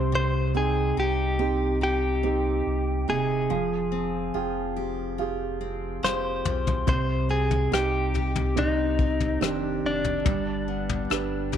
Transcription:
0.00 0.93 C2 medium
0.00 0.11 C3 medium
0.00 3.04 C3 medium
0.00 1.39 G4 medium
0.00 0.14 C5 medium
0.12 3.49 C3 medium
0.12 0.53 C5 medium
0.54 2.23 C4 soft
0.54 1.36 C4 soft
0.54 1.36 D#4 soft
0.54 0.99 G#4 medium
0.54 1.37 G5 soft
0.97 2.62 C2 medium
0.97 1.80 D#4 medium
0.97 1.78 G4 medium
1.39 2.21 C4 soft
1.39 2.21 D#4 soft
1.39 3.53 G4 medium
1.39 2.21 G4 soft
1.81 3.07 D#4 soft
1.81 3.09 G4 medium
2.23 3.91 C4 soft
2.23 3.05 C4 soft
2.23 3.06 D#4 soft
2.23 3.06 G4 soft
2.66 3.05 C2 medium
3.08 3.47 D#1 medium
3.08 3.49 C3 medium
3.08 3.58 D#4 soft
3.08 4.74 G#4 medium
3.50 4.31 F1 loud
3.50 6.87 F3 medium
3.50 6.84 F3 medium
3.92 5.60 C4 soft
4.34 5.99 F1 medium
4.34 5.17 F4 soft
4.34 5.17 G#4 soft
4.34 5.17 G5 soft
4.76 6.02 G4 soft
5.18 6.44 F4 soft
5.18 6.01 F4 soft
5.18 6.01 G4 soft
5.18 6.02 G#4 soft
5.61 7.29 C4 soft
6.03 6.42 F1 medium
6.03 6.85 F4 soft
6.03 8.14 G4 medium
6.03 6.86 G4 soft
6.03 6.86 G#4 soft
6.03 6.88 C5 medium
6.03 snare soft
6.45 6.85 B1 medium
6.45 6.96 F4 soft
6.45 mid tom medium
6.67 floor tom medium
6.87 7.68 C2 loud
6.87 10.21 C3 medium
6.87 10.25 C3 medium
6.87 7.30 C5 medium
6.87 kick medium
6.87 floor tom medium
7.29 8.98 C4 soft
7.29 7.74 G#4 medium
7.51 floor tom medium
7.71 9.37 C2 loud
7.71 8.54 C4 soft
7.71 8.54 D#4 soft
7.71 8.56 D#4 medium
7.71 8.54 G4 soft
7.71 8.60 G4 medium
7.71 cross-stick medium
8.14 9.41 G4 soft
8.14 floor tom soft
8.36 floor tom medium
8.56 9.38 C4 soft
8.56 9.39 D#4 soft
8.56 9.84 D#4 soft
8.56 9.44 D#4 medium
8.56 9.39 G4 soft
8.56 floor tom soft
8.99 10.34 C4 soft
8.99 kick medium
9.20 floor tom medium
9.41 9.80 F1 medium
9.41 10.23 D#3 soft
9.41 10.23 C4 soft
9.41 9.86 D4 medium
9.41 11.52 G4 medium
9.41 10.23 G4 soft
9.41 cross-stick medium
9.83 10.23 F1 medium
9.83 11.50 D4 medium
10.04 floor tom soft
10.25 11.06 G1 loud
10.25 11.57 G2 medium
10.25 11.57 G3 medium
10.25 kick medium
10.25 floor tom medium
10.68 11.57 B3 soft
10.89 floor tom medium
11.10 11.57 G1 medium
11.10 11.57 D4 medium
11.10 11.57 D4 soft
11.10 11.57 G4 soft
11.10 11.57 B4 soft
11.10 cross-stick medium
11.52 11.57 G4 medium
11.52 floor tom soft

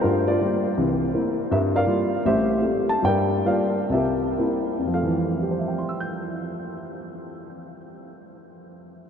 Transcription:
0.01 0.36 G2 medium
0.01 0.73 D4 medium
0.01 0.27 F4 medium
0.01 0.27 A#4 medium
0.28 0.40 F4 medium
0.28 0.74 A#4 medium
0.28 0.74 D5 medium
0.41 0.67 G3 soft
0.41 0.67 A#3 soft
0.41 0.67 F4 medium
0.77 1.09 C2 medium
0.77 1.09 E3 medium
1.14 1.40 A#3 soft
1.14 1.40 C4 soft
1.14 1.40 E4 soft
1.51 1.83 G2 medium
1.51 1.74 A#4 medium
1.51 1.57 E5 medium
1.76 2.22 A#4 medium
1.76 2.22 D5 medium
1.76 2.27 F5 medium
1.87 2.13 G3 soft
1.87 2.14 A#3 soft
1.87 2.14 F4 medium
2.25 2.59 A1 medium
2.25 2.59 A2 medium
2.25 2.61 G4 medium
2.25 3.01 C5 medium
2.25 2.62 E5 medium
2.62 2.91 A3 soft
2.62 2.91 C4 soft
2.62 2.91 G4 soft
2.89 3.03 A5 medium
3.03 3.40 G2 medium
3.03 3.40 G3 medium
3.03 3.46 A#4 medium
3.03 3.46 D5 medium
3.03 3.44 G5 medium
3.45 3.77 G3 soft
3.45 3.77 A#3 soft
3.45 3.77 F4 soft
3.45 3.89 A#4 soft
3.45 3.89 D5 medium
3.45 3.93 F5 medium
3.89 4.32 C2 medium
3.89 4.70 E5 medium
3.94 4.89 G4 soft
3.94 4.89 A#4 soft
4.38 4.74 A#3 soft
4.38 4.75 C4 soft
4.38 4.75 E4 medium
4.78 8.91 F2 soft
4.87 8.99 F3 soft
4.94 9.07 A3 soft
4.94 9.02 F5 medium
5.03 9.10 E3 medium
5.43 9.10 G4 soft
5.51 9.10 C5 soft
5.59 9.10 E5 soft
5.68 9.10 G5 soft
5.78 9.10 C6 soft
5.89 9.10 E6 soft
6.00 9.10 G6 soft

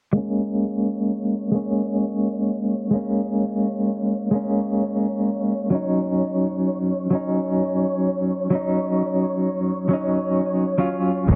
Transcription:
0.13 1.49 G#3 medium
0.13 1.50 A#3 medium
0.13 11.36 C#5 medium
0.17 1.51 C#4 medium
1.52 2.88 G#3 medium
1.52 2.89 A#3 medium
1.56 2.90 C#4 medium
2.91 4.27 G#3 medium
2.91 4.29 A#3 medium
2.95 4.30 C#4 medium
4.31 5.67 G#3 medium
4.31 5.68 A#3 medium
4.35 5.69 C#4 medium
5.70 7.07 F#3 medium
5.70 7.08 C#4 medium
5.75 7.09 D#4 medium
7.10 8.46 F#3 medium
7.10 8.48 C#4 medium
7.15 8.49 D#4 medium
8.50 9.86 F#3 medium
8.50 9.87 C#4 medium
8.55 9.89 D#4 medium
9.89 10.74 F#3 medium
9.89 10.75 C#4 medium
9.93 10.76 D#4 medium
10.78 11.26 F#3 medium
10.78 11.26 C#4 medium
10.78 11.27 F4 loud
11.28 11.36 A#1 medium
11.28 11.36 G#3 medium
11.28 11.36 A#3 medium
11.28 kick loud
11.28 closed hi-hat medium

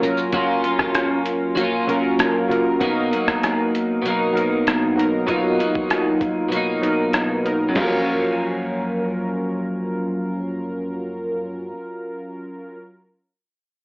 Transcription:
0.00 0.27 F1 medium
0.00 0.32 F#3 medium
0.00 0.33 F#3 medium
0.00 0.33 A#3 medium
0.00 0.02 C#4 medium
0.00 0.33 C#4 medium
0.00 0.25 C#4 medium
0.00 0.02 F4 medium
0.00 0.34 F4 medium
0.00 0.26 F4 medium
0.00 0.03 A#4 medium
0.00 0.26 A#4 medium
0.00 closed hi-hat soft
0.00 shaker soft
0.17 shaker soft
0.33 1.53 F#1 loud
0.33 0.64 F#3 medium
0.33 1.28 F#3 medium
0.33 0.64 A#3 medium
0.33 1.28 C#4 medium
0.33 0.64 C#4 medium
0.33 1.29 F4 medium
0.33 0.62 F4 medium
0.33 1.29 A#4 medium
0.33 kick loud
0.33 closed hi-hat medium
0.64 1.58 A#3 soft
0.64 1.57 C#4 soft
0.64 1.57 F4 medium
0.64 closed hi-hat soft
0.79 kick medium
0.79 cross-stick medium
0.95 cross-stick medium
0.95 closed hi-hat medium
1.26 closed hi-hat medium
1.55 1.81 A#1 medium
1.55 2.81 F#3 medium
1.55 2.82 A#3 medium
1.55 closed hi-hat medium
1.61 2.83 C#4 medium
1.61 2.84 F4 medium
1.87 2.12 F1 loud
1.87 2.35 F#3 medium
1.87 2.35 C#4 medium
1.87 2.36 F4 medium
1.87 2.36 A#4 medium
1.87 closed hi-hat soft
2.19 2.43 F#1 medium
2.19 cross-stick medium
2.19 closed hi-hat medium
2.48 2.74 F#1 medium
2.48 2.72 F#3 medium
2.48 2.73 C#4 medium
2.48 2.73 F4 medium
2.48 2.74 A#4 medium
2.48 closed hi-hat soft
2.79 3.12 B2 medium
2.79 3.75 F#3 medium
2.79 3.12 F#3 medium
2.79 3.12 A#3 medium
2.79 3.75 B3 medium
2.79 3.75 D#4 medium
2.79 3.76 A#4 medium
2.79 kick loud
2.79 closed hi-hat medium
2.83 3.10 D#4 medium
3.11 4.05 F#3 soft
3.11 4.05 A#3 medium
3.11 4.04 D#4 soft
3.11 closed hi-hat soft
3.28 kick medium
3.28 cross-stick medium
3.43 cross-stick medium
3.43 closed hi-hat medium
3.75 closed hi-hat medium
4.02 5.26 B2 medium
4.02 5.27 F#3 medium
4.02 closed hi-hat medium
4.07 5.29 A#3 medium
4.07 5.28 D#4 medium
4.33 4.81 F#3 medium
4.33 4.82 B3 medium
4.33 4.82 D#4 medium
4.33 4.83 A#4 medium
4.37 closed hi-hat soft
4.67 cross-stick medium
4.67 closed hi-hat medium
4.96 5.20 F#3 medium
4.96 5.21 B3 medium
4.96 5.21 D#4 medium
4.96 5.21 A#4 medium
4.96 closed hi-hat soft
5.26 5.58 B2 medium
5.26 6.22 F#3 medium
5.26 5.59 F#3 medium
5.26 5.58 A#3 medium
5.26 6.23 B3 medium
5.26 6.23 D#4 medium
5.26 5.56 D#4 medium
5.26 6.24 F4 medium
5.26 kick loud
5.26 closed hi-hat medium
5.58 6.51 F#3 soft
5.58 6.54 A#3 soft
5.58 6.51 D#4 soft
5.58 closed hi-hat soft
5.75 kick medium
5.90 cross-stick medium
5.90 closed hi-hat medium
6.21 kick medium
6.21 closed hi-hat soft
6.49 7.74 B2 medium
6.49 7.76 F#3 medium
6.49 closed hi-hat medium
6.54 7.82 A#3 medium
6.54 7.78 D#4 medium
6.82 7.30 F#3 medium
6.82 7.30 B3 medium
6.82 7.30 D#4 medium
6.82 7.31 A#4 medium
6.82 closed hi-hat soft
7.13 cross-stick medium
7.13 closed hi-hat medium
7.44 7.68 F#3 medium
7.44 7.68 B3 medium
7.44 7.69 D#4 medium
7.44 7.69 A#4 medium
7.44 closed hi-hat soft
7.69 11.70 F#2 medium
7.69 11.67 F#3 medium
7.74 11.74 F3 medium
7.74 11.69 C#4 medium
7.74 11.70 F4 medium
7.74 kick medium
7.74 snare medium
7.74 crash medium
7.81 11.77 A#3 medium
7.81 11.72 A#4 medium
7.88 11.80 C#4 medium

